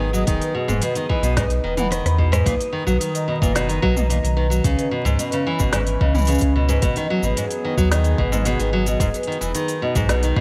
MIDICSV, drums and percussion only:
0, 0, Header, 1, 2, 480
1, 0, Start_track
1, 0, Key_signature, 5, "major"
1, 0, Tempo, 545455
1, 244, Time_signature, 4, 2, 24, 8
1, 9156, End_track
2, 0, Start_track
2, 0, Title_t, "Drums"
2, 124, Note_on_c, 9, 69, 63
2, 212, Note_off_c, 9, 69, 0
2, 239, Note_on_c, 9, 46, 65
2, 243, Note_on_c, 9, 69, 48
2, 244, Note_on_c, 9, 36, 114
2, 327, Note_off_c, 9, 46, 0
2, 331, Note_off_c, 9, 69, 0
2, 332, Note_off_c, 9, 36, 0
2, 365, Note_on_c, 9, 46, 43
2, 369, Note_on_c, 9, 69, 31
2, 453, Note_off_c, 9, 46, 0
2, 457, Note_off_c, 9, 69, 0
2, 604, Note_on_c, 9, 45, 55
2, 608, Note_on_c, 9, 69, 54
2, 692, Note_off_c, 9, 45, 0
2, 696, Note_off_c, 9, 69, 0
2, 718, Note_on_c, 9, 46, 67
2, 722, Note_on_c, 9, 69, 50
2, 806, Note_off_c, 9, 46, 0
2, 810, Note_off_c, 9, 69, 0
2, 840, Note_on_c, 9, 46, 45
2, 844, Note_on_c, 9, 69, 30
2, 928, Note_off_c, 9, 46, 0
2, 932, Note_off_c, 9, 69, 0
2, 966, Note_on_c, 9, 36, 96
2, 1054, Note_off_c, 9, 36, 0
2, 1084, Note_on_c, 9, 46, 31
2, 1088, Note_on_c, 9, 69, 59
2, 1172, Note_off_c, 9, 46, 0
2, 1176, Note_off_c, 9, 69, 0
2, 1205, Note_on_c, 9, 38, 74
2, 1205, Note_on_c, 9, 46, 63
2, 1206, Note_on_c, 9, 36, 107
2, 1208, Note_on_c, 9, 69, 50
2, 1293, Note_off_c, 9, 38, 0
2, 1293, Note_off_c, 9, 46, 0
2, 1294, Note_off_c, 9, 36, 0
2, 1296, Note_off_c, 9, 69, 0
2, 1321, Note_on_c, 9, 46, 45
2, 1325, Note_on_c, 9, 69, 31
2, 1409, Note_off_c, 9, 46, 0
2, 1413, Note_off_c, 9, 69, 0
2, 1560, Note_on_c, 9, 45, 82
2, 1560, Note_on_c, 9, 46, 30
2, 1564, Note_on_c, 9, 69, 60
2, 1648, Note_off_c, 9, 45, 0
2, 1648, Note_off_c, 9, 46, 0
2, 1652, Note_off_c, 9, 69, 0
2, 1687, Note_on_c, 9, 37, 59
2, 1687, Note_on_c, 9, 46, 58
2, 1690, Note_on_c, 9, 69, 49
2, 1775, Note_off_c, 9, 37, 0
2, 1775, Note_off_c, 9, 46, 0
2, 1778, Note_off_c, 9, 69, 0
2, 1811, Note_on_c, 9, 37, 60
2, 1811, Note_on_c, 9, 46, 45
2, 1815, Note_on_c, 9, 69, 31
2, 1899, Note_off_c, 9, 37, 0
2, 1899, Note_off_c, 9, 46, 0
2, 1903, Note_off_c, 9, 69, 0
2, 1927, Note_on_c, 9, 36, 57
2, 2015, Note_off_c, 9, 36, 0
2, 2049, Note_on_c, 9, 37, 77
2, 2049, Note_on_c, 9, 46, 31
2, 2053, Note_on_c, 9, 69, 66
2, 2137, Note_off_c, 9, 37, 0
2, 2137, Note_off_c, 9, 46, 0
2, 2141, Note_off_c, 9, 69, 0
2, 2167, Note_on_c, 9, 36, 116
2, 2168, Note_on_c, 9, 46, 63
2, 2171, Note_on_c, 9, 69, 47
2, 2255, Note_off_c, 9, 36, 0
2, 2256, Note_off_c, 9, 46, 0
2, 2259, Note_off_c, 9, 69, 0
2, 2293, Note_on_c, 9, 46, 46
2, 2296, Note_on_c, 9, 69, 31
2, 2381, Note_off_c, 9, 46, 0
2, 2384, Note_off_c, 9, 69, 0
2, 2529, Note_on_c, 9, 69, 57
2, 2617, Note_off_c, 9, 69, 0
2, 2649, Note_on_c, 9, 46, 70
2, 2652, Note_on_c, 9, 69, 56
2, 2737, Note_off_c, 9, 46, 0
2, 2740, Note_off_c, 9, 69, 0
2, 2772, Note_on_c, 9, 46, 48
2, 2775, Note_on_c, 9, 69, 33
2, 2860, Note_off_c, 9, 46, 0
2, 2863, Note_off_c, 9, 69, 0
2, 3008, Note_on_c, 9, 36, 99
2, 3019, Note_on_c, 9, 69, 65
2, 3096, Note_off_c, 9, 36, 0
2, 3107, Note_off_c, 9, 69, 0
2, 3129, Note_on_c, 9, 38, 73
2, 3129, Note_on_c, 9, 46, 67
2, 3133, Note_on_c, 9, 69, 56
2, 3217, Note_off_c, 9, 38, 0
2, 3217, Note_off_c, 9, 46, 0
2, 3221, Note_off_c, 9, 69, 0
2, 3250, Note_on_c, 9, 46, 46
2, 3254, Note_on_c, 9, 69, 34
2, 3338, Note_off_c, 9, 46, 0
2, 3342, Note_off_c, 9, 69, 0
2, 3369, Note_on_c, 9, 36, 103
2, 3457, Note_off_c, 9, 36, 0
2, 3488, Note_on_c, 9, 45, 74
2, 3492, Note_on_c, 9, 69, 63
2, 3576, Note_off_c, 9, 45, 0
2, 3580, Note_off_c, 9, 69, 0
2, 3611, Note_on_c, 9, 46, 65
2, 3614, Note_on_c, 9, 69, 54
2, 3699, Note_off_c, 9, 46, 0
2, 3702, Note_off_c, 9, 69, 0
2, 3736, Note_on_c, 9, 46, 45
2, 3740, Note_on_c, 9, 69, 34
2, 3824, Note_off_c, 9, 46, 0
2, 3828, Note_off_c, 9, 69, 0
2, 3973, Note_on_c, 9, 46, 31
2, 3976, Note_on_c, 9, 69, 68
2, 4061, Note_off_c, 9, 46, 0
2, 4064, Note_off_c, 9, 69, 0
2, 4087, Note_on_c, 9, 36, 123
2, 4087, Note_on_c, 9, 46, 58
2, 4090, Note_on_c, 9, 69, 53
2, 4175, Note_off_c, 9, 36, 0
2, 4175, Note_off_c, 9, 46, 0
2, 4178, Note_off_c, 9, 69, 0
2, 4212, Note_on_c, 9, 46, 44
2, 4216, Note_on_c, 9, 69, 33
2, 4300, Note_off_c, 9, 46, 0
2, 4304, Note_off_c, 9, 69, 0
2, 4453, Note_on_c, 9, 69, 56
2, 4541, Note_off_c, 9, 69, 0
2, 4568, Note_on_c, 9, 46, 67
2, 4572, Note_on_c, 9, 69, 60
2, 4656, Note_off_c, 9, 46, 0
2, 4660, Note_off_c, 9, 69, 0
2, 4683, Note_on_c, 9, 46, 47
2, 4686, Note_on_c, 9, 69, 33
2, 4771, Note_off_c, 9, 46, 0
2, 4774, Note_off_c, 9, 69, 0
2, 4922, Note_on_c, 9, 69, 69
2, 4927, Note_on_c, 9, 36, 111
2, 5010, Note_off_c, 9, 69, 0
2, 5015, Note_off_c, 9, 36, 0
2, 5039, Note_on_c, 9, 38, 83
2, 5039, Note_on_c, 9, 46, 70
2, 5042, Note_on_c, 9, 69, 59
2, 5127, Note_off_c, 9, 38, 0
2, 5127, Note_off_c, 9, 46, 0
2, 5130, Note_off_c, 9, 69, 0
2, 5162, Note_on_c, 9, 46, 43
2, 5166, Note_on_c, 9, 69, 32
2, 5250, Note_off_c, 9, 46, 0
2, 5254, Note_off_c, 9, 69, 0
2, 5287, Note_on_c, 9, 36, 107
2, 5375, Note_off_c, 9, 36, 0
2, 5407, Note_on_c, 9, 45, 73
2, 5410, Note_on_c, 9, 69, 29
2, 5440, Note_off_c, 9, 69, 0
2, 5440, Note_on_c, 9, 69, 37
2, 5468, Note_off_c, 9, 69, 0
2, 5468, Note_on_c, 9, 69, 37
2, 5495, Note_off_c, 9, 45, 0
2, 5500, Note_off_c, 9, 69, 0
2, 5500, Note_on_c, 9, 69, 40
2, 5519, Note_on_c, 9, 46, 62
2, 5522, Note_off_c, 9, 69, 0
2, 5522, Note_on_c, 9, 69, 54
2, 5555, Note_off_c, 9, 69, 0
2, 5555, Note_on_c, 9, 69, 50
2, 5583, Note_off_c, 9, 69, 0
2, 5583, Note_on_c, 9, 69, 51
2, 5607, Note_off_c, 9, 46, 0
2, 5619, Note_off_c, 9, 69, 0
2, 5619, Note_on_c, 9, 69, 59
2, 5642, Note_on_c, 9, 46, 47
2, 5645, Note_off_c, 9, 69, 0
2, 5645, Note_on_c, 9, 69, 34
2, 5646, Note_on_c, 9, 36, 68
2, 5730, Note_off_c, 9, 46, 0
2, 5733, Note_off_c, 9, 69, 0
2, 5734, Note_off_c, 9, 36, 0
2, 5884, Note_on_c, 9, 46, 34
2, 5888, Note_on_c, 9, 69, 68
2, 5972, Note_off_c, 9, 46, 0
2, 5976, Note_off_c, 9, 69, 0
2, 6002, Note_on_c, 9, 46, 59
2, 6006, Note_on_c, 9, 36, 125
2, 6006, Note_on_c, 9, 69, 56
2, 6090, Note_off_c, 9, 46, 0
2, 6094, Note_off_c, 9, 36, 0
2, 6094, Note_off_c, 9, 69, 0
2, 6124, Note_on_c, 9, 46, 41
2, 6127, Note_on_c, 9, 69, 35
2, 6212, Note_off_c, 9, 46, 0
2, 6215, Note_off_c, 9, 69, 0
2, 6363, Note_on_c, 9, 69, 64
2, 6451, Note_off_c, 9, 69, 0
2, 6486, Note_on_c, 9, 46, 70
2, 6489, Note_on_c, 9, 69, 59
2, 6574, Note_off_c, 9, 46, 0
2, 6577, Note_off_c, 9, 69, 0
2, 6605, Note_on_c, 9, 46, 44
2, 6608, Note_on_c, 9, 69, 35
2, 6693, Note_off_c, 9, 46, 0
2, 6696, Note_off_c, 9, 69, 0
2, 6843, Note_on_c, 9, 36, 105
2, 6847, Note_on_c, 9, 69, 68
2, 6931, Note_off_c, 9, 36, 0
2, 6935, Note_off_c, 9, 69, 0
2, 6965, Note_on_c, 9, 38, 80
2, 6965, Note_on_c, 9, 46, 67
2, 6969, Note_on_c, 9, 69, 54
2, 7053, Note_off_c, 9, 38, 0
2, 7053, Note_off_c, 9, 46, 0
2, 7057, Note_off_c, 9, 69, 0
2, 7078, Note_on_c, 9, 46, 41
2, 7082, Note_on_c, 9, 69, 36
2, 7166, Note_off_c, 9, 46, 0
2, 7170, Note_off_c, 9, 69, 0
2, 7201, Note_on_c, 9, 36, 112
2, 7289, Note_off_c, 9, 36, 0
2, 7324, Note_on_c, 9, 45, 69
2, 7327, Note_on_c, 9, 69, 71
2, 7412, Note_off_c, 9, 45, 0
2, 7415, Note_off_c, 9, 69, 0
2, 7439, Note_on_c, 9, 46, 60
2, 7443, Note_on_c, 9, 69, 56
2, 7527, Note_off_c, 9, 46, 0
2, 7531, Note_off_c, 9, 69, 0
2, 7564, Note_on_c, 9, 46, 41
2, 7568, Note_on_c, 9, 69, 34
2, 7652, Note_off_c, 9, 46, 0
2, 7656, Note_off_c, 9, 69, 0
2, 7800, Note_on_c, 9, 46, 30
2, 7804, Note_on_c, 9, 69, 71
2, 7888, Note_off_c, 9, 46, 0
2, 7892, Note_off_c, 9, 69, 0
2, 7920, Note_on_c, 9, 36, 117
2, 7924, Note_on_c, 9, 46, 59
2, 7928, Note_on_c, 9, 69, 58
2, 8008, Note_off_c, 9, 36, 0
2, 8012, Note_off_c, 9, 46, 0
2, 8016, Note_off_c, 9, 69, 0
2, 8044, Note_on_c, 9, 46, 39
2, 8048, Note_on_c, 9, 69, 35
2, 8125, Note_off_c, 9, 46, 0
2, 8125, Note_on_c, 9, 46, 33
2, 8136, Note_off_c, 9, 69, 0
2, 8202, Note_off_c, 9, 46, 0
2, 8202, Note_on_c, 9, 46, 27
2, 8284, Note_off_c, 9, 46, 0
2, 8284, Note_on_c, 9, 46, 27
2, 8287, Note_on_c, 9, 69, 62
2, 8372, Note_off_c, 9, 46, 0
2, 8375, Note_off_c, 9, 69, 0
2, 8400, Note_on_c, 9, 46, 65
2, 8404, Note_on_c, 9, 69, 62
2, 8488, Note_off_c, 9, 46, 0
2, 8492, Note_off_c, 9, 69, 0
2, 8521, Note_on_c, 9, 46, 42
2, 8525, Note_on_c, 9, 69, 36
2, 8609, Note_off_c, 9, 46, 0
2, 8613, Note_off_c, 9, 69, 0
2, 8759, Note_on_c, 9, 46, 28
2, 8761, Note_on_c, 9, 36, 108
2, 8762, Note_on_c, 9, 69, 68
2, 8847, Note_off_c, 9, 46, 0
2, 8849, Note_off_c, 9, 36, 0
2, 8850, Note_off_c, 9, 69, 0
2, 8881, Note_on_c, 9, 38, 72
2, 8881, Note_on_c, 9, 46, 58
2, 8884, Note_on_c, 9, 69, 53
2, 8969, Note_off_c, 9, 38, 0
2, 8969, Note_off_c, 9, 46, 0
2, 8972, Note_off_c, 9, 69, 0
2, 9000, Note_on_c, 9, 46, 44
2, 9004, Note_on_c, 9, 69, 35
2, 9088, Note_off_c, 9, 46, 0
2, 9092, Note_off_c, 9, 69, 0
2, 9121, Note_on_c, 9, 36, 105
2, 9156, Note_off_c, 9, 36, 0
2, 9156, End_track
0, 0, End_of_file